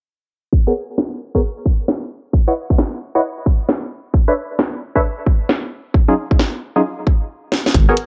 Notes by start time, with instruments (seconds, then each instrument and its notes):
0.53 kick
0.67 synth stab B3 F#4 G#4 A#4 C#5
0.98 snare
1.35 synth stab B3 F#4 G#4 A#4 C#5, kick
1.66 kick
1.88 snare
2.33 kick
2.48 synth stab E4 B4 C#5 D#5 F#5
2.70 kick
2.78 snare
3.15 synth stab E4 B4 C#5 D#5 F#5
3.46 kick
3.69 snare
4.14 kick
4.28 synth stab D4 A4 B4 C#5 E5
4.59 snare
4.96 synth stab D4 A4 B4 C#5 E5, kick
5.26 kick
5.49 snare
5.94 kick
6.08 synth stab F#3 C#4 D#4 F4 G#4
6.31 kick
6.39 snare
6.76 synth stab F#3 C#4 D#4 F4 G#4
7.07 kick
7.52 snare
7.66 snare
7.75 detuned saw bass G#1, kick, closed hi-hat
7.89 synth stab B3 F#4 G#4 A#4 C#5
7.97 closed hi-hat